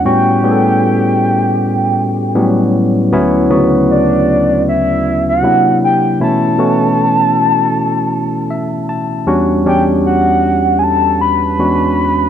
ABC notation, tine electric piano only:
X:1
M:4/4
L:1/8
Q:"Swing 16ths" 1/4=78
K:Edor
V:1 name="Tine electric piano"
[A,,G,B,CF] [A,,G,B,C^GA]3 z2 [A,,F,=G,B,C]2 | [D,,F,B,CE] [D,,C,F,B,F]3 z2 [=C,F,_B,DE]2 | [B,,E,A,CE] [B,,E,A,CF]3 z2 e a | [E,,G,CDF] [E,,G,CDG]3 z2 [E,,^G,CDF]2 |]